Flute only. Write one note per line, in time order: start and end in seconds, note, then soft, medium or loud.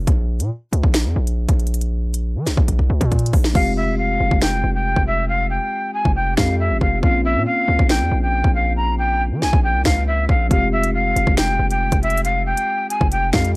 3.55 3.73 F5 loud
3.77 3.95 E5 medium
3.98 4.39 F5 medium
4.42 4.73 G5 medium
4.75 5.05 G5 medium
5.07 5.25 E5 medium
5.29 5.47 F5 medium
5.50 5.91 G5 medium
5.94 6.12 G#5 medium
6.16 6.34 G5 medium
6.38 6.55 F5 medium
6.60 6.78 E5 medium
6.82 6.99 F5 medium
7.03 7.21 F5 loud
7.25 7.43 E5 medium
7.47 7.87 F5 loud
7.90 8.21 G5 medium
8.23 8.53 G5 medium
8.55 8.73 F5 medium
8.77 8.95 A#5 medium
8.99 9.23 G5 medium
9.42 9.60 G#5 medium
9.64 9.82 G5 medium
9.85 10.03 F5 medium
10.07 10.25 E5 medium
10.29 10.47 F5 medium
10.51 10.69 F5 loud
10.73 10.90 E5 medium
10.94 11.35 F5 medium
11.38 11.69 G5 medium
11.71 12.01 G5 medium
12.03 12.21 E5 medium
12.25 12.43 F5 medium
12.46 12.87 G5 medium
12.90 13.08 G#5 medium
13.12 13.30 G5 medium
13.34 13.51 F5 medium